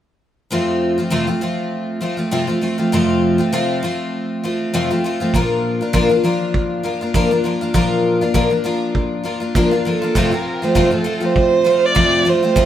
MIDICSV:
0, 0, Header, 1, 4, 480
1, 0, Start_track
1, 0, Key_signature, -1, "major"
1, 0, Tempo, 602410
1, 413, Time_signature, 4, 2, 24, 8
1, 10083, End_track
2, 0, Start_track
2, 0, Title_t, "Violin"
2, 0, Program_c, 0, 40
2, 7864, Note_on_c, 0, 69, 70
2, 8240, Note_on_c, 0, 70, 65
2, 8252, Note_off_c, 0, 69, 0
2, 8475, Note_on_c, 0, 72, 74
2, 8487, Note_off_c, 0, 70, 0
2, 8708, Note_off_c, 0, 72, 0
2, 8719, Note_on_c, 0, 69, 74
2, 8961, Note_on_c, 0, 72, 83
2, 8973, Note_off_c, 0, 69, 0
2, 9059, Note_off_c, 0, 72, 0
2, 9071, Note_on_c, 0, 72, 88
2, 9447, Note_on_c, 0, 74, 89
2, 9459, Note_off_c, 0, 72, 0
2, 9789, Note_on_c, 0, 72, 88
2, 9801, Note_off_c, 0, 74, 0
2, 10083, Note_off_c, 0, 72, 0
2, 10083, End_track
3, 0, Start_track
3, 0, Title_t, "Twelve-string acoustic guitar"
3, 0, Program_c, 1, 25
3, 403, Note_on_c, 1, 41, 67
3, 410, Note_on_c, 1, 53, 68
3, 412, Note_on_c, 1, 48, 75
3, 415, Note_on_c, 1, 57, 77
3, 415, Note_on_c, 1, 60, 77
3, 419, Note_on_c, 1, 65, 74
3, 770, Note_off_c, 1, 65, 0
3, 778, Note_off_c, 1, 60, 0
3, 779, Note_on_c, 1, 65, 47
3, 780, Note_off_c, 1, 41, 0
3, 783, Note_off_c, 1, 57, 0
3, 784, Note_off_c, 1, 48, 0
3, 784, Note_off_c, 1, 53, 0
3, 787, Note_on_c, 1, 60, 45
3, 793, Note_on_c, 1, 57, 36
3, 797, Note_on_c, 1, 53, 39
3, 876, Note_off_c, 1, 53, 0
3, 880, Note_on_c, 1, 41, 71
3, 881, Note_off_c, 1, 57, 0
3, 882, Note_off_c, 1, 65, 0
3, 883, Note_off_c, 1, 60, 0
3, 885, Note_on_c, 1, 53, 76
3, 887, Note_on_c, 1, 48, 72
3, 890, Note_on_c, 1, 57, 78
3, 892, Note_on_c, 1, 60, 72
3, 892, Note_on_c, 1, 65, 80
3, 1003, Note_off_c, 1, 65, 0
3, 1007, Note_off_c, 1, 60, 0
3, 1012, Note_on_c, 1, 65, 42
3, 1014, Note_off_c, 1, 57, 0
3, 1016, Note_on_c, 1, 60, 38
3, 1018, Note_off_c, 1, 41, 0
3, 1021, Note_off_c, 1, 53, 0
3, 1022, Note_off_c, 1, 48, 0
3, 1023, Note_on_c, 1, 57, 33
3, 1031, Note_on_c, 1, 53, 34
3, 1115, Note_off_c, 1, 53, 0
3, 1120, Note_off_c, 1, 57, 0
3, 1124, Note_off_c, 1, 60, 0
3, 1124, Note_on_c, 1, 53, 54
3, 1127, Note_off_c, 1, 65, 0
3, 1129, Note_on_c, 1, 57, 57
3, 1134, Note_on_c, 1, 60, 55
3, 1141, Note_on_c, 1, 65, 54
3, 1596, Note_off_c, 1, 53, 0
3, 1596, Note_off_c, 1, 57, 0
3, 1599, Note_on_c, 1, 53, 51
3, 1600, Note_off_c, 1, 60, 0
3, 1605, Note_on_c, 1, 57, 55
3, 1610, Note_on_c, 1, 60, 50
3, 1616, Note_off_c, 1, 65, 0
3, 1619, Note_on_c, 1, 65, 53
3, 1719, Note_off_c, 1, 65, 0
3, 1728, Note_on_c, 1, 65, 40
3, 1731, Note_off_c, 1, 60, 0
3, 1734, Note_off_c, 1, 57, 0
3, 1738, Note_off_c, 1, 53, 0
3, 1740, Note_on_c, 1, 60, 41
3, 1743, Note_on_c, 1, 57, 36
3, 1747, Note_on_c, 1, 53, 33
3, 1840, Note_off_c, 1, 53, 0
3, 1843, Note_off_c, 1, 57, 0
3, 1843, Note_off_c, 1, 60, 0
3, 1843, Note_on_c, 1, 41, 65
3, 1845, Note_off_c, 1, 65, 0
3, 1846, Note_on_c, 1, 48, 75
3, 1850, Note_on_c, 1, 53, 65
3, 1852, Note_on_c, 1, 60, 72
3, 1853, Note_on_c, 1, 57, 76
3, 1854, Note_on_c, 1, 65, 74
3, 1961, Note_off_c, 1, 65, 0
3, 1968, Note_off_c, 1, 60, 0
3, 1970, Note_on_c, 1, 65, 53
3, 1976, Note_off_c, 1, 57, 0
3, 1978, Note_on_c, 1, 60, 40
3, 1980, Note_off_c, 1, 41, 0
3, 1981, Note_off_c, 1, 48, 0
3, 1981, Note_off_c, 1, 53, 0
3, 1985, Note_on_c, 1, 57, 41
3, 1990, Note_on_c, 1, 53, 40
3, 2073, Note_off_c, 1, 53, 0
3, 2081, Note_off_c, 1, 57, 0
3, 2083, Note_on_c, 1, 53, 43
3, 2084, Note_off_c, 1, 60, 0
3, 2086, Note_off_c, 1, 65, 0
3, 2090, Note_on_c, 1, 57, 48
3, 2094, Note_on_c, 1, 60, 48
3, 2098, Note_on_c, 1, 65, 52
3, 2205, Note_off_c, 1, 65, 0
3, 2210, Note_off_c, 1, 60, 0
3, 2214, Note_on_c, 1, 65, 45
3, 2216, Note_off_c, 1, 57, 0
3, 2219, Note_on_c, 1, 60, 49
3, 2220, Note_off_c, 1, 53, 0
3, 2225, Note_on_c, 1, 57, 43
3, 2230, Note_on_c, 1, 53, 41
3, 2326, Note_off_c, 1, 57, 0
3, 2327, Note_off_c, 1, 53, 0
3, 2328, Note_off_c, 1, 65, 0
3, 2328, Note_on_c, 1, 41, 77
3, 2330, Note_off_c, 1, 60, 0
3, 2333, Note_on_c, 1, 48, 67
3, 2336, Note_on_c, 1, 53, 63
3, 2336, Note_on_c, 1, 57, 68
3, 2341, Note_on_c, 1, 65, 81
3, 2342, Note_on_c, 1, 60, 72
3, 2685, Note_off_c, 1, 65, 0
3, 2693, Note_off_c, 1, 60, 0
3, 2695, Note_on_c, 1, 65, 54
3, 2697, Note_off_c, 1, 57, 0
3, 2703, Note_off_c, 1, 41, 0
3, 2703, Note_on_c, 1, 60, 48
3, 2704, Note_off_c, 1, 53, 0
3, 2705, Note_off_c, 1, 48, 0
3, 2706, Note_on_c, 1, 57, 41
3, 2714, Note_on_c, 1, 53, 44
3, 2804, Note_off_c, 1, 53, 0
3, 2807, Note_off_c, 1, 57, 0
3, 2807, Note_off_c, 1, 60, 0
3, 2808, Note_off_c, 1, 65, 0
3, 2809, Note_on_c, 1, 41, 75
3, 2812, Note_on_c, 1, 48, 67
3, 2813, Note_on_c, 1, 53, 74
3, 2816, Note_on_c, 1, 57, 73
3, 2817, Note_on_c, 1, 60, 71
3, 2820, Note_on_c, 1, 65, 84
3, 3039, Note_off_c, 1, 53, 0
3, 3048, Note_on_c, 1, 53, 57
3, 3049, Note_off_c, 1, 57, 0
3, 3051, Note_off_c, 1, 41, 0
3, 3052, Note_off_c, 1, 48, 0
3, 3055, Note_off_c, 1, 60, 0
3, 3056, Note_off_c, 1, 65, 0
3, 3058, Note_on_c, 1, 57, 55
3, 3063, Note_on_c, 1, 60, 56
3, 3066, Note_on_c, 1, 65, 57
3, 3530, Note_off_c, 1, 57, 0
3, 3531, Note_off_c, 1, 53, 0
3, 3534, Note_on_c, 1, 53, 47
3, 3536, Note_off_c, 1, 60, 0
3, 3539, Note_on_c, 1, 57, 51
3, 3545, Note_off_c, 1, 65, 0
3, 3545, Note_on_c, 1, 60, 52
3, 3548, Note_on_c, 1, 65, 58
3, 3769, Note_off_c, 1, 53, 0
3, 3770, Note_off_c, 1, 57, 0
3, 3771, Note_off_c, 1, 60, 0
3, 3773, Note_on_c, 1, 41, 76
3, 3774, Note_off_c, 1, 65, 0
3, 3776, Note_on_c, 1, 48, 75
3, 3778, Note_on_c, 1, 53, 80
3, 3779, Note_on_c, 1, 57, 72
3, 3780, Note_on_c, 1, 60, 71
3, 3783, Note_on_c, 1, 65, 75
3, 3900, Note_off_c, 1, 65, 0
3, 3904, Note_off_c, 1, 60, 0
3, 3905, Note_off_c, 1, 41, 0
3, 3906, Note_off_c, 1, 48, 0
3, 3907, Note_off_c, 1, 53, 0
3, 3908, Note_off_c, 1, 57, 0
3, 3909, Note_on_c, 1, 65, 48
3, 3914, Note_on_c, 1, 60, 47
3, 3919, Note_on_c, 1, 57, 43
3, 3924, Note_on_c, 1, 53, 40
3, 4008, Note_off_c, 1, 53, 0
3, 4015, Note_off_c, 1, 65, 0
3, 4017, Note_off_c, 1, 57, 0
3, 4017, Note_off_c, 1, 60, 0
3, 4018, Note_on_c, 1, 53, 51
3, 4027, Note_on_c, 1, 57, 50
3, 4031, Note_on_c, 1, 60, 52
3, 4035, Note_on_c, 1, 65, 58
3, 4136, Note_off_c, 1, 65, 0
3, 4143, Note_off_c, 1, 60, 0
3, 4145, Note_on_c, 1, 65, 51
3, 4147, Note_off_c, 1, 53, 0
3, 4152, Note_off_c, 1, 57, 0
3, 4152, Note_on_c, 1, 60, 52
3, 4161, Note_on_c, 1, 53, 43
3, 4161, Note_on_c, 1, 57, 45
3, 4250, Note_off_c, 1, 53, 0
3, 4253, Note_off_c, 1, 65, 0
3, 4256, Note_off_c, 1, 60, 0
3, 4257, Note_on_c, 1, 46, 67
3, 4259, Note_on_c, 1, 53, 74
3, 4260, Note_off_c, 1, 57, 0
3, 4264, Note_on_c, 1, 58, 74
3, 4270, Note_on_c, 1, 62, 70
3, 4270, Note_on_c, 1, 65, 86
3, 4618, Note_off_c, 1, 65, 0
3, 4626, Note_off_c, 1, 46, 0
3, 4628, Note_off_c, 1, 53, 0
3, 4628, Note_on_c, 1, 65, 46
3, 4629, Note_off_c, 1, 62, 0
3, 4630, Note_off_c, 1, 58, 0
3, 4638, Note_on_c, 1, 62, 44
3, 4642, Note_on_c, 1, 58, 43
3, 4721, Note_off_c, 1, 58, 0
3, 4723, Note_off_c, 1, 62, 0
3, 4726, Note_on_c, 1, 53, 78
3, 4727, Note_off_c, 1, 65, 0
3, 4727, Note_on_c, 1, 46, 77
3, 4730, Note_on_c, 1, 58, 81
3, 4733, Note_on_c, 1, 62, 83
3, 4737, Note_on_c, 1, 65, 81
3, 4845, Note_off_c, 1, 65, 0
3, 4855, Note_on_c, 1, 65, 47
3, 4857, Note_off_c, 1, 62, 0
3, 4861, Note_off_c, 1, 46, 0
3, 4861, Note_off_c, 1, 53, 0
3, 4863, Note_off_c, 1, 58, 0
3, 4866, Note_on_c, 1, 62, 35
3, 4871, Note_on_c, 1, 58, 36
3, 4965, Note_off_c, 1, 58, 0
3, 4967, Note_off_c, 1, 65, 0
3, 4969, Note_on_c, 1, 53, 52
3, 4971, Note_off_c, 1, 62, 0
3, 4975, Note_on_c, 1, 58, 59
3, 4980, Note_on_c, 1, 62, 59
3, 4989, Note_on_c, 1, 65, 54
3, 5442, Note_off_c, 1, 53, 0
3, 5442, Note_off_c, 1, 58, 0
3, 5446, Note_on_c, 1, 53, 46
3, 5448, Note_off_c, 1, 62, 0
3, 5451, Note_on_c, 1, 58, 47
3, 5458, Note_on_c, 1, 62, 53
3, 5459, Note_off_c, 1, 65, 0
3, 5463, Note_on_c, 1, 65, 62
3, 5576, Note_off_c, 1, 65, 0
3, 5580, Note_off_c, 1, 53, 0
3, 5583, Note_off_c, 1, 58, 0
3, 5586, Note_off_c, 1, 62, 0
3, 5586, Note_on_c, 1, 65, 41
3, 5595, Note_on_c, 1, 62, 40
3, 5603, Note_on_c, 1, 58, 32
3, 5688, Note_off_c, 1, 58, 0
3, 5691, Note_off_c, 1, 62, 0
3, 5691, Note_on_c, 1, 46, 68
3, 5692, Note_off_c, 1, 65, 0
3, 5693, Note_on_c, 1, 53, 70
3, 5697, Note_on_c, 1, 58, 69
3, 5700, Note_on_c, 1, 62, 84
3, 5702, Note_on_c, 1, 65, 81
3, 5815, Note_off_c, 1, 65, 0
3, 5823, Note_off_c, 1, 46, 0
3, 5823, Note_off_c, 1, 62, 0
3, 5824, Note_off_c, 1, 53, 0
3, 5824, Note_on_c, 1, 65, 49
3, 5826, Note_off_c, 1, 58, 0
3, 5832, Note_on_c, 1, 62, 47
3, 5841, Note_on_c, 1, 58, 45
3, 5926, Note_off_c, 1, 58, 0
3, 5927, Note_on_c, 1, 53, 52
3, 5932, Note_off_c, 1, 62, 0
3, 5932, Note_off_c, 1, 65, 0
3, 5936, Note_on_c, 1, 58, 47
3, 5941, Note_on_c, 1, 62, 52
3, 5945, Note_on_c, 1, 65, 55
3, 6055, Note_off_c, 1, 65, 0
3, 6061, Note_off_c, 1, 53, 0
3, 6064, Note_off_c, 1, 62, 0
3, 6064, Note_on_c, 1, 65, 50
3, 6065, Note_off_c, 1, 58, 0
3, 6073, Note_on_c, 1, 62, 41
3, 6081, Note_on_c, 1, 58, 43
3, 6165, Note_off_c, 1, 58, 0
3, 6166, Note_off_c, 1, 62, 0
3, 6166, Note_on_c, 1, 46, 66
3, 6169, Note_on_c, 1, 53, 82
3, 6172, Note_off_c, 1, 65, 0
3, 6174, Note_on_c, 1, 58, 75
3, 6176, Note_on_c, 1, 62, 87
3, 6180, Note_on_c, 1, 65, 78
3, 6534, Note_off_c, 1, 65, 0
3, 6540, Note_off_c, 1, 46, 0
3, 6542, Note_off_c, 1, 53, 0
3, 6543, Note_off_c, 1, 62, 0
3, 6544, Note_off_c, 1, 58, 0
3, 6544, Note_on_c, 1, 65, 47
3, 6552, Note_on_c, 1, 62, 46
3, 6562, Note_on_c, 1, 58, 38
3, 6643, Note_off_c, 1, 62, 0
3, 6645, Note_off_c, 1, 58, 0
3, 6646, Note_on_c, 1, 46, 76
3, 6647, Note_off_c, 1, 65, 0
3, 6649, Note_on_c, 1, 53, 71
3, 6652, Note_on_c, 1, 62, 81
3, 6655, Note_on_c, 1, 58, 76
3, 6657, Note_on_c, 1, 65, 79
3, 6764, Note_off_c, 1, 65, 0
3, 6773, Note_off_c, 1, 62, 0
3, 6773, Note_on_c, 1, 65, 36
3, 6780, Note_off_c, 1, 46, 0
3, 6782, Note_off_c, 1, 53, 0
3, 6782, Note_on_c, 1, 62, 37
3, 6783, Note_off_c, 1, 58, 0
3, 6792, Note_on_c, 1, 58, 32
3, 6878, Note_off_c, 1, 58, 0
3, 6883, Note_on_c, 1, 53, 54
3, 6885, Note_off_c, 1, 62, 0
3, 6886, Note_off_c, 1, 65, 0
3, 6888, Note_on_c, 1, 58, 55
3, 6895, Note_on_c, 1, 62, 61
3, 6899, Note_on_c, 1, 65, 69
3, 7356, Note_off_c, 1, 53, 0
3, 7359, Note_off_c, 1, 58, 0
3, 7359, Note_on_c, 1, 53, 47
3, 7363, Note_off_c, 1, 62, 0
3, 7368, Note_on_c, 1, 58, 49
3, 7373, Note_off_c, 1, 65, 0
3, 7373, Note_on_c, 1, 62, 50
3, 7376, Note_on_c, 1, 65, 51
3, 7481, Note_off_c, 1, 65, 0
3, 7490, Note_on_c, 1, 65, 43
3, 7492, Note_off_c, 1, 62, 0
3, 7497, Note_off_c, 1, 53, 0
3, 7501, Note_off_c, 1, 58, 0
3, 7502, Note_on_c, 1, 62, 40
3, 7509, Note_on_c, 1, 58, 32
3, 7604, Note_off_c, 1, 65, 0
3, 7609, Note_off_c, 1, 58, 0
3, 7610, Note_off_c, 1, 62, 0
3, 7611, Note_on_c, 1, 46, 65
3, 7615, Note_on_c, 1, 53, 75
3, 7619, Note_on_c, 1, 58, 78
3, 7620, Note_on_c, 1, 62, 77
3, 7623, Note_on_c, 1, 65, 73
3, 7730, Note_off_c, 1, 65, 0
3, 7740, Note_on_c, 1, 65, 45
3, 7741, Note_off_c, 1, 62, 0
3, 7742, Note_off_c, 1, 46, 0
3, 7745, Note_off_c, 1, 53, 0
3, 7746, Note_off_c, 1, 58, 0
3, 7751, Note_on_c, 1, 62, 44
3, 7758, Note_on_c, 1, 58, 41
3, 7849, Note_off_c, 1, 65, 0
3, 7850, Note_off_c, 1, 58, 0
3, 7850, Note_on_c, 1, 53, 51
3, 7854, Note_off_c, 1, 62, 0
3, 7859, Note_on_c, 1, 58, 55
3, 7865, Note_on_c, 1, 62, 45
3, 7868, Note_on_c, 1, 65, 52
3, 7973, Note_off_c, 1, 65, 0
3, 7982, Note_off_c, 1, 53, 0
3, 7982, Note_on_c, 1, 65, 51
3, 7986, Note_off_c, 1, 62, 0
3, 7987, Note_off_c, 1, 58, 0
3, 7995, Note_on_c, 1, 62, 45
3, 8002, Note_on_c, 1, 58, 37
3, 8088, Note_on_c, 1, 41, 66
3, 8090, Note_off_c, 1, 65, 0
3, 8095, Note_off_c, 1, 58, 0
3, 8095, Note_on_c, 1, 48, 75
3, 8095, Note_on_c, 1, 53, 70
3, 8097, Note_off_c, 1, 62, 0
3, 8098, Note_on_c, 1, 57, 73
3, 8100, Note_on_c, 1, 60, 69
3, 8101, Note_on_c, 1, 65, 80
3, 8210, Note_off_c, 1, 65, 0
3, 8218, Note_off_c, 1, 60, 0
3, 8219, Note_on_c, 1, 65, 41
3, 8221, Note_off_c, 1, 41, 0
3, 8224, Note_off_c, 1, 48, 0
3, 8225, Note_off_c, 1, 53, 0
3, 8226, Note_off_c, 1, 57, 0
3, 8227, Note_on_c, 1, 60, 42
3, 8239, Note_on_c, 1, 53, 35
3, 8453, Note_off_c, 1, 65, 0
3, 8462, Note_off_c, 1, 60, 0
3, 8462, Note_on_c, 1, 65, 45
3, 8470, Note_off_c, 1, 53, 0
3, 8471, Note_on_c, 1, 60, 45
3, 8477, Note_on_c, 1, 57, 43
3, 8483, Note_on_c, 1, 53, 35
3, 8562, Note_off_c, 1, 53, 0
3, 8563, Note_off_c, 1, 57, 0
3, 8564, Note_on_c, 1, 41, 59
3, 8567, Note_off_c, 1, 65, 0
3, 8568, Note_off_c, 1, 60, 0
3, 8570, Note_on_c, 1, 48, 71
3, 8571, Note_on_c, 1, 53, 74
3, 8572, Note_on_c, 1, 57, 68
3, 8577, Note_on_c, 1, 65, 74
3, 8578, Note_on_c, 1, 60, 67
3, 8680, Note_off_c, 1, 65, 0
3, 8686, Note_off_c, 1, 60, 0
3, 8689, Note_on_c, 1, 65, 36
3, 8695, Note_off_c, 1, 53, 0
3, 8695, Note_off_c, 1, 57, 0
3, 8696, Note_on_c, 1, 60, 36
3, 8699, Note_off_c, 1, 41, 0
3, 8702, Note_off_c, 1, 48, 0
3, 8704, Note_on_c, 1, 53, 33
3, 8705, Note_on_c, 1, 57, 30
3, 8788, Note_off_c, 1, 53, 0
3, 8791, Note_off_c, 1, 57, 0
3, 8797, Note_off_c, 1, 60, 0
3, 8797, Note_on_c, 1, 53, 53
3, 8801, Note_on_c, 1, 57, 61
3, 8803, Note_off_c, 1, 65, 0
3, 8806, Note_on_c, 1, 60, 47
3, 8812, Note_on_c, 1, 65, 54
3, 8918, Note_off_c, 1, 65, 0
3, 8922, Note_off_c, 1, 60, 0
3, 8928, Note_on_c, 1, 65, 43
3, 8932, Note_off_c, 1, 57, 0
3, 8932, Note_on_c, 1, 60, 43
3, 8935, Note_off_c, 1, 53, 0
3, 8941, Note_on_c, 1, 57, 39
3, 8945, Note_on_c, 1, 53, 34
3, 9268, Note_off_c, 1, 53, 0
3, 9271, Note_off_c, 1, 57, 0
3, 9277, Note_on_c, 1, 53, 43
3, 9281, Note_off_c, 1, 60, 0
3, 9281, Note_on_c, 1, 57, 46
3, 9282, Note_off_c, 1, 65, 0
3, 9290, Note_on_c, 1, 60, 50
3, 9294, Note_on_c, 1, 65, 60
3, 9515, Note_off_c, 1, 53, 0
3, 9517, Note_off_c, 1, 57, 0
3, 9520, Note_off_c, 1, 60, 0
3, 9520, Note_off_c, 1, 65, 0
3, 9520, Note_on_c, 1, 41, 72
3, 9521, Note_on_c, 1, 48, 65
3, 9525, Note_on_c, 1, 53, 63
3, 9527, Note_on_c, 1, 57, 71
3, 9530, Note_on_c, 1, 60, 71
3, 9530, Note_on_c, 1, 65, 64
3, 9751, Note_off_c, 1, 53, 0
3, 9759, Note_off_c, 1, 57, 0
3, 9760, Note_on_c, 1, 53, 49
3, 9762, Note_off_c, 1, 60, 0
3, 9764, Note_off_c, 1, 41, 0
3, 9765, Note_off_c, 1, 48, 0
3, 9769, Note_off_c, 1, 65, 0
3, 9769, Note_on_c, 1, 57, 52
3, 9772, Note_on_c, 1, 60, 53
3, 9779, Note_on_c, 1, 65, 52
3, 9892, Note_off_c, 1, 65, 0
3, 9897, Note_off_c, 1, 53, 0
3, 9899, Note_off_c, 1, 60, 0
3, 9901, Note_off_c, 1, 57, 0
3, 9901, Note_on_c, 1, 65, 44
3, 9909, Note_on_c, 1, 60, 42
3, 9913, Note_on_c, 1, 57, 38
3, 9918, Note_on_c, 1, 53, 38
3, 10002, Note_off_c, 1, 53, 0
3, 10004, Note_off_c, 1, 57, 0
3, 10005, Note_off_c, 1, 60, 0
3, 10005, Note_on_c, 1, 41, 64
3, 10007, Note_on_c, 1, 48, 69
3, 10009, Note_off_c, 1, 65, 0
3, 10012, Note_on_c, 1, 53, 71
3, 10014, Note_on_c, 1, 57, 80
3, 10015, Note_on_c, 1, 60, 76
3, 10018, Note_on_c, 1, 65, 78
3, 10083, Note_off_c, 1, 41, 0
3, 10083, Note_off_c, 1, 48, 0
3, 10083, Note_off_c, 1, 53, 0
3, 10083, Note_off_c, 1, 57, 0
3, 10083, Note_off_c, 1, 60, 0
3, 10083, Note_off_c, 1, 65, 0
3, 10083, End_track
4, 0, Start_track
4, 0, Title_t, "Drums"
4, 4253, Note_on_c, 9, 36, 83
4, 4332, Note_off_c, 9, 36, 0
4, 4732, Note_on_c, 9, 36, 89
4, 4811, Note_off_c, 9, 36, 0
4, 5213, Note_on_c, 9, 36, 86
4, 5293, Note_off_c, 9, 36, 0
4, 5691, Note_on_c, 9, 36, 93
4, 5771, Note_off_c, 9, 36, 0
4, 6170, Note_on_c, 9, 36, 90
4, 6250, Note_off_c, 9, 36, 0
4, 6648, Note_on_c, 9, 36, 88
4, 6728, Note_off_c, 9, 36, 0
4, 7130, Note_on_c, 9, 36, 82
4, 7210, Note_off_c, 9, 36, 0
4, 7610, Note_on_c, 9, 36, 99
4, 7690, Note_off_c, 9, 36, 0
4, 8090, Note_on_c, 9, 36, 84
4, 8090, Note_on_c, 9, 49, 76
4, 8169, Note_off_c, 9, 36, 0
4, 8170, Note_off_c, 9, 49, 0
4, 8568, Note_on_c, 9, 36, 84
4, 8648, Note_off_c, 9, 36, 0
4, 9050, Note_on_c, 9, 36, 90
4, 9130, Note_off_c, 9, 36, 0
4, 9530, Note_on_c, 9, 36, 90
4, 9610, Note_off_c, 9, 36, 0
4, 10008, Note_on_c, 9, 36, 90
4, 10083, Note_off_c, 9, 36, 0
4, 10083, End_track
0, 0, End_of_file